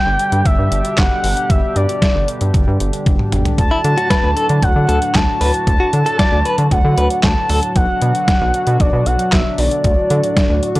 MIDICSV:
0, 0, Header, 1, 6, 480
1, 0, Start_track
1, 0, Key_signature, 2, "major"
1, 0, Tempo, 521739
1, 1377, Time_signature, 4, 2, 24, 8
1, 9934, End_track
2, 0, Start_track
2, 0, Title_t, "Analog synth lead"
2, 0, Program_c, 0, 81
2, 0, Note_on_c, 0, 79, 120
2, 420, Note_on_c, 0, 76, 100
2, 433, Note_off_c, 0, 79, 0
2, 902, Note_on_c, 0, 78, 107
2, 916, Note_off_c, 0, 76, 0
2, 1380, Note_on_c, 0, 76, 101
2, 1393, Note_off_c, 0, 78, 0
2, 1620, Note_on_c, 0, 74, 87
2, 1633, Note_off_c, 0, 76, 0
2, 2099, Note_off_c, 0, 74, 0
2, 3300, Note_on_c, 0, 81, 122
2, 4260, Note_on_c, 0, 78, 108
2, 4274, Note_off_c, 0, 81, 0
2, 4740, Note_on_c, 0, 81, 115
2, 4754, Note_off_c, 0, 78, 0
2, 5212, Note_off_c, 0, 81, 0
2, 5218, Note_on_c, 0, 81, 122
2, 6141, Note_off_c, 0, 81, 0
2, 6179, Note_on_c, 0, 78, 100
2, 6625, Note_off_c, 0, 78, 0
2, 6658, Note_on_c, 0, 81, 112
2, 7104, Note_off_c, 0, 81, 0
2, 7137, Note_on_c, 0, 78, 110
2, 8098, Note_on_c, 0, 74, 92
2, 8112, Note_off_c, 0, 78, 0
2, 8337, Note_on_c, 0, 78, 98
2, 8351, Note_off_c, 0, 74, 0
2, 8575, Note_on_c, 0, 76, 96
2, 8589, Note_off_c, 0, 78, 0
2, 8817, Note_on_c, 0, 74, 95
2, 8831, Note_off_c, 0, 76, 0
2, 9934, Note_off_c, 0, 74, 0
2, 9934, End_track
3, 0, Start_track
3, 0, Title_t, "Clean electric guitar"
3, 0, Program_c, 1, 27
3, 3414, Note_on_c, 1, 64, 70
3, 3507, Note_off_c, 1, 64, 0
3, 3657, Note_on_c, 1, 66, 88
3, 3748, Note_off_c, 1, 66, 0
3, 3774, Note_on_c, 1, 71, 81
3, 3958, Note_off_c, 1, 71, 0
3, 4015, Note_on_c, 1, 69, 75
3, 4107, Note_off_c, 1, 69, 0
3, 4495, Note_on_c, 1, 69, 81
3, 4587, Note_off_c, 1, 69, 0
3, 4977, Note_on_c, 1, 71, 71
3, 5068, Note_off_c, 1, 71, 0
3, 5336, Note_on_c, 1, 66, 80
3, 5428, Note_off_c, 1, 66, 0
3, 5575, Note_on_c, 1, 69, 77
3, 5667, Note_off_c, 1, 69, 0
3, 5696, Note_on_c, 1, 74, 81
3, 5879, Note_off_c, 1, 74, 0
3, 5939, Note_on_c, 1, 71, 81
3, 6030, Note_off_c, 1, 71, 0
3, 6420, Note_on_c, 1, 71, 79
3, 6510, Note_off_c, 1, 71, 0
3, 6899, Note_on_c, 1, 69, 68
3, 6989, Note_off_c, 1, 69, 0
3, 9934, End_track
4, 0, Start_track
4, 0, Title_t, "Analog synth pad"
4, 0, Program_c, 2, 89
4, 0, Note_on_c, 2, 47, 84
4, 0, Note_on_c, 2, 50, 85
4, 0, Note_on_c, 2, 55, 72
4, 0, Note_on_c, 2, 62, 76
4, 0, Note_on_c, 2, 67, 93
4, 3260, Note_off_c, 2, 47, 0
4, 3260, Note_off_c, 2, 55, 0
4, 3260, Note_off_c, 2, 67, 0
4, 3297, Note_on_c, 2, 54, 72
4, 3298, Note_on_c, 2, 45, 81
4, 3298, Note_on_c, 2, 66, 90
4, 7100, Note_off_c, 2, 62, 0
4, 7101, Note_off_c, 2, 45, 0
4, 7101, Note_off_c, 2, 50, 0
4, 7101, Note_off_c, 2, 66, 0
4, 7139, Note_on_c, 2, 47, 82
4, 7139, Note_on_c, 2, 50, 76
4, 7139, Note_on_c, 2, 62, 76
4, 7139, Note_on_c, 2, 66, 91
4, 9039, Note_off_c, 2, 47, 0
4, 9039, Note_off_c, 2, 66, 0
4, 9059, Note_on_c, 2, 45, 80
4, 9059, Note_on_c, 2, 66, 91
4, 9934, Note_off_c, 2, 45, 0
4, 9934, Note_off_c, 2, 50, 0
4, 9934, Note_off_c, 2, 54, 0
4, 9934, Note_off_c, 2, 62, 0
4, 9934, Note_off_c, 2, 66, 0
4, 9934, End_track
5, 0, Start_track
5, 0, Title_t, "Analog synth bass"
5, 0, Program_c, 3, 38
5, 57, Note_on_c, 3, 31, 93
5, 152, Note_off_c, 3, 31, 0
5, 297, Note_on_c, 3, 43, 106
5, 392, Note_off_c, 3, 43, 0
5, 419, Note_on_c, 3, 31, 105
5, 513, Note_off_c, 3, 31, 0
5, 537, Note_on_c, 3, 43, 96
5, 632, Note_off_c, 3, 43, 0
5, 658, Note_on_c, 3, 31, 105
5, 752, Note_off_c, 3, 31, 0
5, 900, Note_on_c, 3, 31, 103
5, 993, Note_off_c, 3, 31, 0
5, 1138, Note_on_c, 3, 31, 109
5, 1232, Note_off_c, 3, 31, 0
5, 1378, Note_on_c, 3, 31, 105
5, 1472, Note_off_c, 3, 31, 0
5, 1620, Note_on_c, 3, 43, 101
5, 1713, Note_off_c, 3, 43, 0
5, 1980, Note_on_c, 3, 31, 96
5, 2073, Note_off_c, 3, 31, 0
5, 2221, Note_on_c, 3, 43, 97
5, 2314, Note_off_c, 3, 43, 0
5, 2338, Note_on_c, 3, 31, 109
5, 2432, Note_off_c, 3, 31, 0
5, 2460, Note_on_c, 3, 43, 106
5, 2554, Note_off_c, 3, 43, 0
5, 2581, Note_on_c, 3, 31, 102
5, 2674, Note_off_c, 3, 31, 0
5, 2818, Note_on_c, 3, 31, 106
5, 2912, Note_off_c, 3, 31, 0
5, 3058, Note_on_c, 3, 31, 101
5, 3152, Note_off_c, 3, 31, 0
5, 3297, Note_on_c, 3, 38, 107
5, 3391, Note_off_c, 3, 38, 0
5, 3538, Note_on_c, 3, 50, 102
5, 3632, Note_off_c, 3, 50, 0
5, 3897, Note_on_c, 3, 38, 99
5, 3992, Note_off_c, 3, 38, 0
5, 4137, Note_on_c, 3, 50, 94
5, 4232, Note_off_c, 3, 50, 0
5, 4256, Note_on_c, 3, 38, 105
5, 4351, Note_off_c, 3, 38, 0
5, 4378, Note_on_c, 3, 50, 100
5, 4472, Note_off_c, 3, 50, 0
5, 4497, Note_on_c, 3, 38, 100
5, 4592, Note_off_c, 3, 38, 0
5, 4737, Note_on_c, 3, 38, 106
5, 4832, Note_off_c, 3, 38, 0
5, 4978, Note_on_c, 3, 38, 106
5, 5072, Note_off_c, 3, 38, 0
5, 5217, Note_on_c, 3, 38, 105
5, 5312, Note_off_c, 3, 38, 0
5, 5458, Note_on_c, 3, 50, 100
5, 5553, Note_off_c, 3, 50, 0
5, 5817, Note_on_c, 3, 38, 101
5, 5911, Note_off_c, 3, 38, 0
5, 6056, Note_on_c, 3, 50, 99
5, 6151, Note_off_c, 3, 50, 0
5, 6176, Note_on_c, 3, 38, 106
5, 6271, Note_off_c, 3, 38, 0
5, 6298, Note_on_c, 3, 50, 105
5, 6392, Note_off_c, 3, 50, 0
5, 6418, Note_on_c, 3, 38, 104
5, 6512, Note_off_c, 3, 38, 0
5, 6658, Note_on_c, 3, 38, 109
5, 6752, Note_off_c, 3, 38, 0
5, 6897, Note_on_c, 3, 38, 106
5, 6992, Note_off_c, 3, 38, 0
5, 7137, Note_on_c, 3, 35, 111
5, 7232, Note_off_c, 3, 35, 0
5, 7378, Note_on_c, 3, 47, 99
5, 7473, Note_off_c, 3, 47, 0
5, 7738, Note_on_c, 3, 35, 102
5, 7833, Note_off_c, 3, 35, 0
5, 7977, Note_on_c, 3, 47, 104
5, 8072, Note_off_c, 3, 47, 0
5, 8097, Note_on_c, 3, 35, 106
5, 8191, Note_off_c, 3, 35, 0
5, 8215, Note_on_c, 3, 47, 99
5, 8311, Note_off_c, 3, 47, 0
5, 8336, Note_on_c, 3, 35, 100
5, 8431, Note_off_c, 3, 35, 0
5, 8578, Note_on_c, 3, 35, 99
5, 8672, Note_off_c, 3, 35, 0
5, 8817, Note_on_c, 3, 35, 105
5, 8912, Note_off_c, 3, 35, 0
5, 9056, Note_on_c, 3, 38, 112
5, 9151, Note_off_c, 3, 38, 0
5, 9297, Note_on_c, 3, 50, 108
5, 9392, Note_off_c, 3, 50, 0
5, 9657, Note_on_c, 3, 38, 101
5, 9752, Note_off_c, 3, 38, 0
5, 9897, Note_on_c, 3, 50, 97
5, 9934, Note_off_c, 3, 50, 0
5, 9934, End_track
6, 0, Start_track
6, 0, Title_t, "Drums"
6, 179, Note_on_c, 9, 42, 66
6, 271, Note_off_c, 9, 42, 0
6, 297, Note_on_c, 9, 42, 58
6, 389, Note_off_c, 9, 42, 0
6, 418, Note_on_c, 9, 36, 113
6, 419, Note_on_c, 9, 42, 75
6, 510, Note_off_c, 9, 36, 0
6, 511, Note_off_c, 9, 42, 0
6, 660, Note_on_c, 9, 42, 82
6, 752, Note_off_c, 9, 42, 0
6, 779, Note_on_c, 9, 42, 65
6, 871, Note_off_c, 9, 42, 0
6, 898, Note_on_c, 9, 38, 124
6, 898, Note_on_c, 9, 39, 104
6, 899, Note_on_c, 9, 36, 118
6, 900, Note_on_c, 9, 42, 64
6, 990, Note_off_c, 9, 38, 0
6, 990, Note_off_c, 9, 39, 0
6, 991, Note_off_c, 9, 36, 0
6, 992, Note_off_c, 9, 42, 0
6, 1139, Note_on_c, 9, 46, 78
6, 1231, Note_off_c, 9, 46, 0
6, 1261, Note_on_c, 9, 42, 61
6, 1353, Note_off_c, 9, 42, 0
6, 1379, Note_on_c, 9, 36, 122
6, 1380, Note_on_c, 9, 42, 77
6, 1471, Note_off_c, 9, 36, 0
6, 1472, Note_off_c, 9, 42, 0
6, 1619, Note_on_c, 9, 42, 78
6, 1711, Note_off_c, 9, 42, 0
6, 1740, Note_on_c, 9, 42, 54
6, 1832, Note_off_c, 9, 42, 0
6, 1858, Note_on_c, 9, 36, 112
6, 1860, Note_on_c, 9, 38, 109
6, 1861, Note_on_c, 9, 42, 82
6, 1950, Note_off_c, 9, 36, 0
6, 1952, Note_off_c, 9, 38, 0
6, 1953, Note_off_c, 9, 42, 0
6, 2099, Note_on_c, 9, 42, 69
6, 2191, Note_off_c, 9, 42, 0
6, 2216, Note_on_c, 9, 42, 59
6, 2308, Note_off_c, 9, 42, 0
6, 2338, Note_on_c, 9, 36, 109
6, 2338, Note_on_c, 9, 42, 74
6, 2430, Note_off_c, 9, 36, 0
6, 2430, Note_off_c, 9, 42, 0
6, 2579, Note_on_c, 9, 42, 80
6, 2671, Note_off_c, 9, 42, 0
6, 2698, Note_on_c, 9, 42, 64
6, 2790, Note_off_c, 9, 42, 0
6, 2818, Note_on_c, 9, 36, 118
6, 2818, Note_on_c, 9, 42, 66
6, 2818, Note_on_c, 9, 48, 62
6, 2910, Note_off_c, 9, 36, 0
6, 2910, Note_off_c, 9, 42, 0
6, 2910, Note_off_c, 9, 48, 0
6, 2938, Note_on_c, 9, 47, 65
6, 3030, Note_off_c, 9, 47, 0
6, 3058, Note_on_c, 9, 42, 77
6, 3058, Note_on_c, 9, 45, 93
6, 3150, Note_off_c, 9, 42, 0
6, 3150, Note_off_c, 9, 45, 0
6, 3178, Note_on_c, 9, 42, 60
6, 3178, Note_on_c, 9, 43, 97
6, 3270, Note_off_c, 9, 42, 0
6, 3270, Note_off_c, 9, 43, 0
6, 3296, Note_on_c, 9, 42, 75
6, 3297, Note_on_c, 9, 36, 122
6, 3388, Note_off_c, 9, 42, 0
6, 3389, Note_off_c, 9, 36, 0
6, 3537, Note_on_c, 9, 42, 76
6, 3629, Note_off_c, 9, 42, 0
6, 3658, Note_on_c, 9, 42, 52
6, 3750, Note_off_c, 9, 42, 0
6, 3776, Note_on_c, 9, 36, 106
6, 3777, Note_on_c, 9, 38, 110
6, 3778, Note_on_c, 9, 42, 86
6, 3868, Note_off_c, 9, 36, 0
6, 3869, Note_off_c, 9, 38, 0
6, 3870, Note_off_c, 9, 42, 0
6, 4017, Note_on_c, 9, 42, 66
6, 4109, Note_off_c, 9, 42, 0
6, 4134, Note_on_c, 9, 42, 60
6, 4226, Note_off_c, 9, 42, 0
6, 4255, Note_on_c, 9, 42, 75
6, 4256, Note_on_c, 9, 36, 110
6, 4347, Note_off_c, 9, 42, 0
6, 4348, Note_off_c, 9, 36, 0
6, 4498, Note_on_c, 9, 42, 79
6, 4590, Note_off_c, 9, 42, 0
6, 4617, Note_on_c, 9, 42, 63
6, 4709, Note_off_c, 9, 42, 0
6, 4736, Note_on_c, 9, 38, 119
6, 4736, Note_on_c, 9, 39, 103
6, 4737, Note_on_c, 9, 42, 69
6, 4738, Note_on_c, 9, 36, 115
6, 4828, Note_off_c, 9, 38, 0
6, 4828, Note_off_c, 9, 39, 0
6, 4829, Note_off_c, 9, 42, 0
6, 4830, Note_off_c, 9, 36, 0
6, 4977, Note_on_c, 9, 46, 75
6, 5069, Note_off_c, 9, 46, 0
6, 5098, Note_on_c, 9, 42, 59
6, 5190, Note_off_c, 9, 42, 0
6, 5217, Note_on_c, 9, 36, 119
6, 5218, Note_on_c, 9, 42, 75
6, 5309, Note_off_c, 9, 36, 0
6, 5310, Note_off_c, 9, 42, 0
6, 5456, Note_on_c, 9, 42, 77
6, 5548, Note_off_c, 9, 42, 0
6, 5578, Note_on_c, 9, 42, 53
6, 5670, Note_off_c, 9, 42, 0
6, 5696, Note_on_c, 9, 36, 105
6, 5697, Note_on_c, 9, 38, 110
6, 5698, Note_on_c, 9, 42, 84
6, 5788, Note_off_c, 9, 36, 0
6, 5789, Note_off_c, 9, 38, 0
6, 5790, Note_off_c, 9, 42, 0
6, 5938, Note_on_c, 9, 42, 65
6, 6030, Note_off_c, 9, 42, 0
6, 6055, Note_on_c, 9, 42, 58
6, 6147, Note_off_c, 9, 42, 0
6, 6177, Note_on_c, 9, 36, 110
6, 6177, Note_on_c, 9, 42, 76
6, 6269, Note_off_c, 9, 36, 0
6, 6269, Note_off_c, 9, 42, 0
6, 6418, Note_on_c, 9, 42, 82
6, 6510, Note_off_c, 9, 42, 0
6, 6536, Note_on_c, 9, 42, 63
6, 6628, Note_off_c, 9, 42, 0
6, 6654, Note_on_c, 9, 38, 122
6, 6654, Note_on_c, 9, 39, 103
6, 6655, Note_on_c, 9, 42, 68
6, 6657, Note_on_c, 9, 36, 118
6, 6746, Note_off_c, 9, 38, 0
6, 6746, Note_off_c, 9, 39, 0
6, 6747, Note_off_c, 9, 42, 0
6, 6749, Note_off_c, 9, 36, 0
6, 6895, Note_on_c, 9, 46, 75
6, 6987, Note_off_c, 9, 46, 0
6, 7017, Note_on_c, 9, 42, 60
6, 7109, Note_off_c, 9, 42, 0
6, 7136, Note_on_c, 9, 36, 118
6, 7136, Note_on_c, 9, 42, 77
6, 7228, Note_off_c, 9, 36, 0
6, 7228, Note_off_c, 9, 42, 0
6, 7374, Note_on_c, 9, 42, 80
6, 7466, Note_off_c, 9, 42, 0
6, 7497, Note_on_c, 9, 42, 53
6, 7589, Note_off_c, 9, 42, 0
6, 7616, Note_on_c, 9, 36, 110
6, 7616, Note_on_c, 9, 38, 110
6, 7617, Note_on_c, 9, 42, 84
6, 7708, Note_off_c, 9, 36, 0
6, 7708, Note_off_c, 9, 38, 0
6, 7709, Note_off_c, 9, 42, 0
6, 7857, Note_on_c, 9, 42, 66
6, 7949, Note_off_c, 9, 42, 0
6, 7974, Note_on_c, 9, 42, 56
6, 8066, Note_off_c, 9, 42, 0
6, 8096, Note_on_c, 9, 36, 110
6, 8096, Note_on_c, 9, 42, 75
6, 8188, Note_off_c, 9, 36, 0
6, 8188, Note_off_c, 9, 42, 0
6, 8337, Note_on_c, 9, 42, 81
6, 8429, Note_off_c, 9, 42, 0
6, 8457, Note_on_c, 9, 42, 61
6, 8549, Note_off_c, 9, 42, 0
6, 8576, Note_on_c, 9, 38, 122
6, 8576, Note_on_c, 9, 39, 106
6, 8578, Note_on_c, 9, 36, 116
6, 8578, Note_on_c, 9, 42, 67
6, 8668, Note_off_c, 9, 38, 0
6, 8668, Note_off_c, 9, 39, 0
6, 8670, Note_off_c, 9, 36, 0
6, 8670, Note_off_c, 9, 42, 0
6, 8816, Note_on_c, 9, 46, 74
6, 8908, Note_off_c, 9, 46, 0
6, 8937, Note_on_c, 9, 42, 61
6, 9029, Note_off_c, 9, 42, 0
6, 9055, Note_on_c, 9, 42, 77
6, 9056, Note_on_c, 9, 36, 118
6, 9147, Note_off_c, 9, 42, 0
6, 9148, Note_off_c, 9, 36, 0
6, 9295, Note_on_c, 9, 42, 77
6, 9387, Note_off_c, 9, 42, 0
6, 9416, Note_on_c, 9, 42, 53
6, 9508, Note_off_c, 9, 42, 0
6, 9537, Note_on_c, 9, 36, 110
6, 9537, Note_on_c, 9, 38, 109
6, 9538, Note_on_c, 9, 42, 84
6, 9629, Note_off_c, 9, 36, 0
6, 9629, Note_off_c, 9, 38, 0
6, 9630, Note_off_c, 9, 42, 0
6, 9777, Note_on_c, 9, 42, 66
6, 9869, Note_off_c, 9, 42, 0
6, 9894, Note_on_c, 9, 42, 58
6, 9934, Note_off_c, 9, 42, 0
6, 9934, End_track
0, 0, End_of_file